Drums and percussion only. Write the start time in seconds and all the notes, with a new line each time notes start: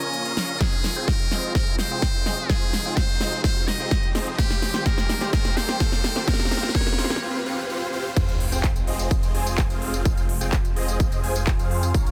0.02 closed hi-hat
0.13 closed hi-hat
0.25 closed hi-hat
0.37 snare, open hi-hat
0.49 closed hi-hat
0.61 kick, snare, closed hi-hat
0.72 closed hi-hat
0.84 snare, open hi-hat
0.96 closed hi-hat
1.08 kick, snare, closed hi-hat
1.20 closed hi-hat
1.31 snare, open hi-hat
1.43 closed hi-hat
1.55 kick, snare, closed hi-hat
1.67 closed hi-hat
1.79 snare, open hi-hat
1.91 closed hi-hat
2.02 kick, snare, closed hi-hat
2.14 closed hi-hat
2.26 snare, open hi-hat
2.38 closed hi-hat
2.50 kick, snare, closed hi-hat
2.62 closed hi-hat
2.73 snare, open hi-hat
2.85 closed hi-hat
2.97 kick, snare, closed hi-hat
3.09 closed hi-hat
3.20 snare, open hi-hat
3.32 closed hi-hat
3.44 kick, snare, closed hi-hat
3.56 closed hi-hat
3.68 snare, open hi-hat
3.80 closed hi-hat
3.91 kick, snare, closed hi-hat
4.03 closed hi-hat
4.15 snare, open hi-hat
4.27 closed hi-hat
4.38 kick, snare, closed hi-hat
4.50 snare, closed hi-hat
4.62 snare, open hi-hat
4.74 snare, closed hi-hat
4.86 kick, snare, closed hi-hat
4.98 snare, closed hi-hat
5.09 snare, open hi-hat
5.21 snare, closed hi-hat
5.33 kick, snare, closed hi-hat
5.45 snare, closed hi-hat
5.57 snare, open hi-hat
5.69 snare, closed hi-hat
5.80 kick, snare, closed hi-hat
5.92 snare, closed hi-hat
6.04 snare, open hi-hat
6.16 snare, closed hi-hat
6.28 kick, snare, closed hi-hat
6.33 snare
6.39 snare, closed hi-hat
6.45 snare
6.51 snare, open hi-hat
6.57 snare
6.63 snare, closed hi-hat
6.69 snare
6.75 kick, snare, closed hi-hat
6.81 snare
6.87 snare, closed hi-hat
6.93 snare
6.98 snare, open hi-hat
7.04 snare
7.10 snare, closed hi-hat
7.16 snare
8.16 kick, closed hi-hat, tambourine, crash
8.28 closed hi-hat, tambourine
8.40 open hi-hat
8.52 closed hi-hat, tambourine
8.64 kick, clap, closed hi-hat, tambourine
8.76 closed hi-hat, tambourine
8.87 open hi-hat
8.99 closed hi-hat, tambourine
9.11 kick, closed hi-hat, tambourine
9.23 closed hi-hat, tambourine
9.35 open hi-hat
9.47 closed hi-hat, tambourine
9.58 kick, clap, closed hi-hat, tambourine
9.70 closed hi-hat, tambourine
9.82 open hi-hat
9.94 tambourine
10.05 kick, closed hi-hat, tambourine
10.17 closed hi-hat, tambourine
10.29 open hi-hat
10.41 closed hi-hat, tambourine
10.53 kick, clap, closed hi-hat, tambourine
10.65 closed hi-hat, tambourine
10.76 open hi-hat
10.88 closed hi-hat, tambourine
11.00 kick, closed hi-hat, tambourine
11.12 closed hi-hat, tambourine
11.24 open hi-hat
11.36 closed hi-hat, tambourine
11.47 kick, clap, closed hi-hat, tambourine
11.59 closed hi-hat, tambourine
11.71 open hi-hat
11.83 closed hi-hat, tambourine
11.94 kick, closed hi-hat, tambourine
12.06 closed hi-hat, tambourine